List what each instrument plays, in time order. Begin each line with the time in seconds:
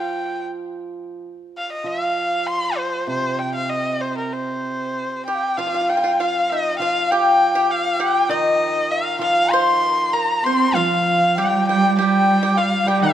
Already playing: hammered dulcimer F3, erhu G5
1.57 erhu F5
1.72 erhu D#5
1.84 hammered dulcimer F3, erhu F5
2.47 erhu C6
2.77 erhu C5
3.07 hammered dulcimer C3, erhu C5
3.39 erhu G5
3.55 erhu F5
3.70 erhu D#5
4.01 erhu C5
4.18 erhu A#4
4.33 erhu C5
5.26 pipa G4, erhu G5, xiao G5
5.35 xiao F5
5.43 xiao G5
5.57 hammered dulcimer F3, pipa F4, erhu F5, xiao F5
5.67 pipa F4
5.74 pipa F4
5.81 pipa F4
5.89 pipa F4, erhu G5, xiao G5
5.97 pipa F4
6.04 pipa F4
6.20 pipa F4, erhu F5, xiao F5
6.50 pipa D#4, erhu D#5, xiao D#5
6.75 erhu F5, xiao G5
6.80 hammered dulcimer F3, pipa F4, xiao F5
7.11 pipa G4, erhu G5, xiao G5
7.55 pipa G4, xiao G5
7.70 xiao F5, erhu F5
8.00 pipa G4, erhu G5, xiao G5
8.29 hammered dulcimer D#3, pipa D#4, erhu D#5, xiao D#5
8.91 erhu F5, xiao F5
9.19 hammered dulcimer F3, pipa F4, xiao F5, erhu F5
9.49 pipa C5, xiao C6, erhu C6
9.89 pipa A#4
10.11 pipa A#4, xiao A#5, erhu A#5
10.43 cello C4, pipa C5, xiao C6, erhu C6
10.73 hammered dulcimer F3, cello F3, pipa F4, xiao F5, erhu F5
11.36 cello G3, pipa G4, xiao G5, erhu G5
11.65 cello G3, xiao G5, erhu G5
11.69 pipa G4
11.96 cello G3, pipa G4, xiao G5, erhu G5
12.43 pipa G4
12.56 pipa F4, xiao F5, erhu F5
12.86 cello G3, hammered dulcimer G3, pipa G4, xiao G5, erhu G5
13.01 cello D#3, pipa D#4, erhu D#5